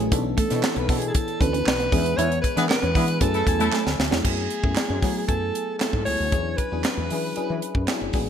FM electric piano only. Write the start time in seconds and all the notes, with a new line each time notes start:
Already playing: B4
0.00 F#3 A3 C#4 E4 G#4
0.12 E3 B3 C#4 D4 A4
0.51 E3 B3 C#4 D4 E4
0.88 E3 B3 C#4 D4 A4
1.40 E3 B3 C#4 D4 A4
1.91 E3 G#3 B3 D4 G#4
2.56 E3 G#3 B3 D4 G#4
2.95 E3 G#3 B3 D4 G#4
3.20 F#3 A3 C#4 E4 G#4
3.47 F#3 A3 C#4 E4 G#5
4.10 F#3 A3 C#4 E4 G#4
4.24 F#3 A3 B3 E4 G#4
4.63 F#3 A3 B3 E4 G#4
5.02 F#3 A3 B3 E4 G#4
5.28 F#3 A3 B3 E4 G#5
5.79 F#3 A3 B3 E4 G#4
6.05 F#3 A3 B3 E4 G#4
6.32 F#3 C#4 D4 E4 G#4
6.72 F#3 C#4 D4 E4 G#4
7.11 F#3 C#4 D4 E4 G#4
7.36 F#3 C#4 D4 E4 G#4
7.89 F#3 C#4 D4 E4 G#4
8.14 F#3 G#3 B3 D4 G#4